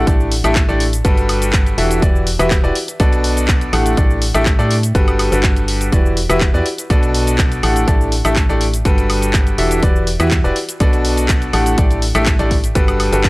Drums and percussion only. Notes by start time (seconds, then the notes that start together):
0.07 kick, closed hi-hat, shaker
0.20 shaker
0.32 open hi-hat
0.44 closed hi-hat, high woodblock, shaker
0.55 kick, clap, closed hi-hat, shaker
0.69 shaker
0.80 open hi-hat
0.93 closed hi-hat, shaker
1.05 kick, closed hi-hat, shaker
1.17 closed hi-hat, shaker
1.29 open hi-hat, high woodblock
1.42 closed hi-hat, shaker
1.53 kick, clap, closed hi-hat, shaker
1.66 closed hi-hat, shaker
1.78 open hi-hat
1.91 closed hi-hat, shaker
2.02 kick, closed hi-hat, shaker
2.16 shaker
2.27 open hi-hat
2.40 closed hi-hat, high woodblock, shaker
2.51 kick, clap, closed hi-hat, shaker
2.64 shaker
2.75 open hi-hat
2.88 closed hi-hat, shaker
3.00 kick, closed hi-hat, shaker
3.13 closed hi-hat, shaker
3.24 open hi-hat
3.37 closed hi-hat, shaker
3.48 kick, clap, closed hi-hat, shaker
3.61 closed hi-hat, shaker
3.73 open hi-hat, high woodblock
3.86 closed hi-hat, shaker
3.97 kick, closed hi-hat, shaker
4.11 shaker
4.22 open hi-hat
4.34 closed hi-hat, high woodblock, shaker
4.46 kick, clap, closed hi-hat, shaker
4.59 shaker
4.71 open hi-hat
4.83 closed hi-hat, shaker
4.95 kick, closed hi-hat, shaker
5.08 closed hi-hat, high woodblock, shaker
5.19 open hi-hat, high woodblock
5.32 closed hi-hat, shaker
5.43 kick, clap, closed hi-hat, shaker
5.56 closed hi-hat, shaker
5.68 open hi-hat
5.81 closed hi-hat, shaker
5.92 kick, closed hi-hat, shaker
6.06 shaker
6.17 open hi-hat
6.30 closed hi-hat, high woodblock, shaker
6.41 kick, clap, closed hi-hat, shaker
6.54 shaker
6.66 open hi-hat
6.78 closed hi-hat, shaker
6.90 kick, closed hi-hat, shaker
7.03 closed hi-hat, shaker
7.14 open hi-hat
7.27 closed hi-hat, shaker
7.38 kick, clap, closed hi-hat, shaker
7.52 closed hi-hat, shaker
7.63 open hi-hat, high woodblock
7.76 closed hi-hat, shaker
7.88 kick, closed hi-hat, shaker
8.01 shaker
8.12 open hi-hat
8.25 closed hi-hat, high woodblock, shaker
8.36 kick, clap, closed hi-hat, shaker
8.50 shaker
8.61 open hi-hat
8.74 closed hi-hat, shaker
8.85 kick, closed hi-hat, shaker
8.98 closed hi-hat, shaker
9.10 open hi-hat, high woodblock
9.22 closed hi-hat, shaker
9.33 kick, clap, closed hi-hat, shaker
9.47 closed hi-hat, shaker
9.58 open hi-hat
9.71 closed hi-hat, shaker
9.83 kick, closed hi-hat, shaker
9.96 shaker
10.07 open hi-hat
10.20 closed hi-hat, high woodblock, shaker
10.31 kick, clap, closed hi-hat, shaker
10.45 shaker
10.56 open hi-hat
10.69 closed hi-hat, shaker
10.80 kick, closed hi-hat, shaker
10.93 closed hi-hat, shaker
11.05 open hi-hat
11.17 closed hi-hat, shaker
11.28 kick, clap, closed hi-hat, shaker
11.42 closed hi-hat, shaker
11.53 open hi-hat, high woodblock
11.66 closed hi-hat, shaker
11.78 kick, closed hi-hat, shaker
11.91 closed hi-hat, shaker
12.02 open hi-hat
12.15 closed hi-hat, high woodblock, shaker
12.26 kick, clap, closed hi-hat, shaker
12.39 closed hi-hat, shaker
12.51 kick, open hi-hat
12.64 closed hi-hat, shaker
12.75 kick, closed hi-hat, shaker
12.88 closed hi-hat, high woodblock, shaker
13.00 open hi-hat, high woodblock
13.13 closed hi-hat, shaker
13.24 kick, clap, closed hi-hat, shaker